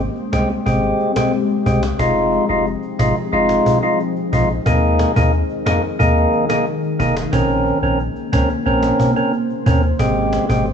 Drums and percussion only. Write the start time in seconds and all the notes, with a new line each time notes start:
0.16 cajon slap
0.33 cajon slap
0.50 cajon slap
0.66 cajon bass
0.83 cajon slap
0.99 cajon slap
1.16 cajon bass, cajon slap
1.33 cajon slap
1.49 cajon slap
1.66 cajon bass
1.83 cajon slap
1.99 cajon bass
2.16 cajon slap
2.33 cajon slap
2.49 cajon slap
2.66 cajon slap
2.82 cajon slap
2.99 cajon bass, cajon slap
3.16 cajon slap
3.33 cajon slap
3.49 cajon slap
3.66 cajon bass
3.99 cajon slap
4.16 cajon slap
4.33 cajon bass
4.49 cajon slap
4.66 cajon bass
4.83 cajon slap
4.99 cajon slap
5.16 cajon bass
5.33 cajon slap
5.49 cajon slap
5.67 cajon slap
5.83 cajon slap
6.00 cajon bass
6.16 cajon slap
6.33 cajon slap
6.50 cajon slap
6.66 cajon slap
6.83 cajon slap
7.00 cajon bass
7.17 cajon slap
7.33 cajon bass
7.50 cajon slap
7.66 cajon slap
7.83 cajon slap
7.99 cajon slap
8.16 cajon slap
8.33 cajon bass, cajon slap
8.50 cajon slap
8.66 cajon slap
8.83 cajon slap
9.00 cajon bass
9.16 cajon slap
9.33 cajon slap
9.50 cajon slap
9.66 cajon bass
9.83 cajon slap
9.99 cajon bass
10.16 cajon slap
10.33 cajon slap
10.50 cajon bass
10.66 cajon slap